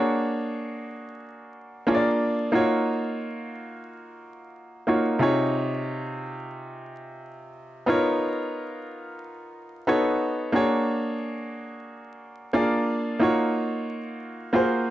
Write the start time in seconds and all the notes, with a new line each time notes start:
Already playing: A#3 D4 F#4 G#4 C#5
1.87 A#3 D4 F4 G#4 C#5
1.95 D5
2.52 A#3 D#4 F4 F#4 C#5
4.87 A#3 D#4 F4 F#4 C#5
5.19 C3 D#4 F4 G#4 C#5
7.86 B3 D#4 F4 A#4 C#5
9.87 B3 D#4 F#4 A4 C#5
10.52 A#3 D4 F#4 G#4 C#5
12.53 A#3 D4 F4 G#4 D5
13.19 A#3 D#4 F4 F#4 C#5
14.53 A#3 F4 F#4 G#4 C5